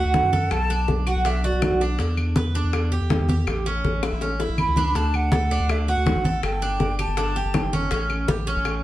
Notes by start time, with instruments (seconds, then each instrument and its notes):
Already playing: cuban tres F#4, flute F#5
0.05 sub bass D2
0.14 high bongo, low bongo, high conga
0.23 sub bass F#2
0.33 cuban tres A4, high bongo, high conga
0.51 sub bass B1, flute A5, high bongo, high conga, claves
0.70 cuban tres D4, high bongo, high conga
0.88 sub bass B1, high bongo, high conga
1.07 cuban tres F#4, flute F#5, high conga, claves
1.15 sub bass B1
1.25 cuban tres D4, flute E5, high bongo, high conga
1.44 cuban tres F#4, flute D5, high bongo, high conga
1.52 sub bass B1
1.62 high bongo, low bongo, high conga, claves
1.71 sub bass B1
1.81 cuban tres D4, high bongo
1.99 sub bass E2, cuban tres D4, high bongo, high conga
2.17 high bongo, high conga, claves
2.36 sub bass E2, cuban tres B4, high bongo, high conga
2.54 cuban tres D4, high bongo, high conga
2.64 sub bass E2
2.73 high bongo, high conga, claves
2.92 cuban tres G4, high conga
3.01 sub bass E2
3.10 high bongo, low bongo, high conga
3.20 sub bass E2
3.29 cuban tres G4, high bongo, high conga
3.47 sub bass A1, high bongo, high conga, claves
3.66 cuban tres C#4, high bongo, high conga
3.84 sub bass A1, high bongo, high conga
4.03 cuban tres E4, high bongo, high conga, claves
4.12 sub bass A1
4.21 cuban tres C#4, high bongo, high conga
4.39 cuban tres E4, high bongo, high conga
4.49 sub bass A1
4.58 flute B5, high conga, claves
4.67 sub bass C#2
4.76 cuban tres D4, low bongo, high conga
4.95 sub bass D2, cuban tres D4, flute A5, high bongo, high conga
5.13 flute F#5, high bongo, high conga, claves
5.32 sub bass D2, cuban tres A4, high bongo, high conga
5.50 cuban tres D4, high bongo, high conga
5.60 sub bass D2
5.69 flute E5, high bongo, high conga, claves
5.88 cuban tres F#4, flute F#5, high conga
5.97 sub bass D2
6.06 high bongo, low bongo, high conga
6.15 sub bass A1
6.24 cuban tres A4, high bongo, high conga
6.43 sub bass G1, flute G5, high bongo, high conga, claves
6.62 cuban tres D4, high bongo, high conga
6.80 sub bass G1, high bongo, high conga
6.99 cuban tres G4, flute A5, high conga, claves
7.08 sub bass G1
7.17 cuban tres D4, high bongo, high conga
7.36 cuban tres G4, high bongo, high conga
7.45 sub bass G1
7.54 high bongo, low bongo, high conga, claves
7.63 sub bass G1
7.73 cuban tres C#4, high bongo, high conga
7.91 sub bass A1, cuban tres C#4, high bongo, high conga
8.09 high bongo, high conga, claves
8.28 sub bass A1, cuban tres G4, high bongo, high conga
8.47 cuban tres C#4, high bongo, high conga
8.56 sub bass A1
8.65 high bongo, high conga, claves